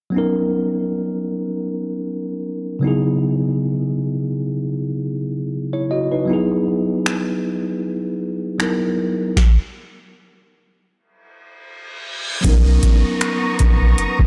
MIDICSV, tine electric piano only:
0, 0, Header, 1, 2, 480
1, 0, Start_track
1, 0, Key_signature, 5, "major"
1, 0, Tempo, 769231
1, 85, Time_signature, 4, 2, 24, 8
1, 8904, End_track
2, 0, Start_track
2, 0, Title_t, "Tine electric piano"
2, 0, Program_c, 0, 4
2, 63, Note_on_c, 0, 54, 66
2, 75, Note_on_c, 0, 59, 60
2, 90, Note_on_c, 0, 61, 59
2, 102, Note_on_c, 0, 63, 60
2, 113, Note_on_c, 0, 70, 71
2, 220, Control_c, 0, 64, 127
2, 1730, Note_off_c, 0, 54, 0
2, 1735, Note_off_c, 0, 59, 0
2, 1743, Note_off_c, 0, 61, 0
2, 1743, Note_on_c, 0, 49, 65
2, 1749, Note_off_c, 0, 63, 0
2, 1754, Note_off_c, 0, 70, 0
2, 1754, Note_on_c, 0, 54, 63
2, 1764, Note_on_c, 0, 59, 62
2, 1772, Control_c, 0, 64, 0
2, 1774, Note_on_c, 0, 63, 64
2, 1785, Note_on_c, 0, 64, 61
2, 1793, Note_on_c, 0, 68, 75
2, 1896, Control_c, 0, 64, 127
2, 3185, Note_off_c, 0, 63, 0
2, 3190, Note_off_c, 0, 64, 0
2, 3194, Note_off_c, 0, 68, 0
2, 3577, Note_on_c, 0, 73, 63
2, 3580, Note_on_c, 0, 64, 52
2, 3649, Note_off_c, 0, 49, 0
2, 3655, Note_off_c, 0, 54, 0
2, 3660, Note_off_c, 0, 59, 0
2, 3681, Note_off_c, 0, 73, 0
2, 3683, Note_off_c, 0, 64, 0
2, 3687, Note_on_c, 0, 75, 66
2, 3692, Note_on_c, 0, 66, 57
2, 3809, Note_off_c, 0, 75, 0
2, 3812, Note_off_c, 0, 66, 0
2, 3816, Note_on_c, 0, 71, 58
2, 3820, Note_on_c, 0, 63, 51
2, 3903, Note_on_c, 0, 54, 68
2, 3916, Note_on_c, 0, 59, 64
2, 3921, Note_off_c, 0, 63, 0
2, 3928, Note_on_c, 0, 63, 62
2, 3934, Control_c, 0, 64, 0
2, 3939, Note_on_c, 0, 64, 58
2, 3952, Note_on_c, 0, 68, 76
2, 4030, Control_c, 0, 64, 127
2, 4044, Note_off_c, 0, 71, 0
2, 5329, Note_off_c, 0, 54, 0
2, 5336, Note_off_c, 0, 59, 0
2, 5342, Note_off_c, 0, 63, 0
2, 5347, Note_off_c, 0, 64, 0
2, 5354, Note_off_c, 0, 68, 0
2, 5355, Note_on_c, 0, 54, 51
2, 5362, Note_on_c, 0, 59, 49
2, 5369, Note_on_c, 0, 63, 48
2, 5375, Note_on_c, 0, 64, 48
2, 5380, Note_on_c, 0, 70, 61
2, 5840, Note_off_c, 0, 54, 0
2, 5844, Note_off_c, 0, 59, 0
2, 5847, Note_off_c, 0, 63, 0
2, 5850, Note_off_c, 0, 64, 0
2, 5852, Note_off_c, 0, 70, 0
2, 5855, Control_c, 0, 64, 0
2, 7743, Note_on_c, 0, 54, 67
2, 7755, Note_on_c, 0, 59, 61
2, 7767, Note_on_c, 0, 61, 62
2, 7780, Note_on_c, 0, 63, 63
2, 7793, Note_on_c, 0, 70, 74
2, 7900, Control_c, 0, 64, 127
2, 8904, Note_off_c, 0, 54, 0
2, 8904, Note_off_c, 0, 59, 0
2, 8904, Note_off_c, 0, 61, 0
2, 8904, Note_off_c, 0, 63, 0
2, 8904, Note_off_c, 0, 70, 0
2, 8904, End_track
0, 0, End_of_file